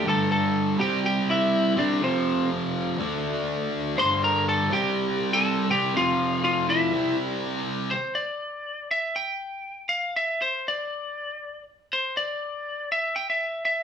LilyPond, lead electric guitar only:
\new Staff \with { instrumentName = "Lead electric guitar" } { \time 4/4 \key c \mixolydian \tempo 4 = 122 <a' a''>8 <a' a''>4 <g' g''>8 <g' g''>8 <e' e''>4 <d' d''>8 | <c' c''>4 r2. | <c'' c'''>8 <bes' bes''>8 <a' a''>8 <g' g''>4~ <g' g''>16 <a' a''>8. <g' g''>8 | <f' f''>4 <f' f''>8 <e' e''>4 r4. |
c''8 d''4. e''8 g''4. | f''8 e''8 c''8 d''2 r8 | c''8 d''4. e''8 g''16 e''8. e''8 | }